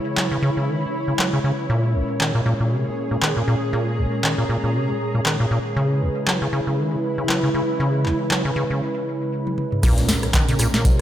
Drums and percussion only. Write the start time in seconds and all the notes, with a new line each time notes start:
0.17 clap
1.19 clap
2.21 clap
3.23 clap
4.24 clap
5.26 clap
6.28 clap
7.29 clap
8.06 clap
8.31 clap
9.47 high tom
9.58 mid tom
9.72 mid tom
9.83 kick, cross-stick, closed hi-hat, crash, tambourine
9.98 snare, closed hi-hat, tambourine
10.09 snare, open hi-hat, tambourine
10.23 cross-stick, closed hi-hat, tambourine
10.33 kick, snare, clap, closed hi-hat, tambourine
10.49 closed hi-hat, mid tom, tambourine
10.59 cross-stick, open hi-hat, tambourine
10.74 snare, closed hi-hat, tambourine
10.85 kick, closed hi-hat, tambourine